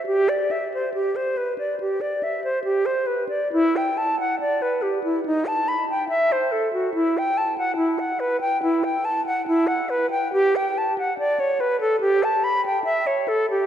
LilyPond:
\new Staff \with { instrumentName = "Flute" } { \time 4/4 \key e \minor \tempo 4 = 71 g'16 d''16 e''16 c''16 g'16 c''16 b'16 d''16 g'16 d''16 e''16 c''16 g'16 c''16 b'16 d''16 | e'16 g''16 a''16 fis''16 d''16 b'16 g'16 e'16 dis'16 a''16 b''16 g''16 e''16 c''16 a'16 fis'16 | e'16 g''16 a''16 fis''16 e'16 fis''16 b'16 g''16 e'16 g''16 a''16 fis''16 e'16 fis''16 b'16 g''16 | \key g \lydian g'16 g''16 a''16 fis''16 d''16 cis''16 b'16 a'16 g'16 a''16 b''16 g''16 e''16 cis''16 a'16 g'16 | }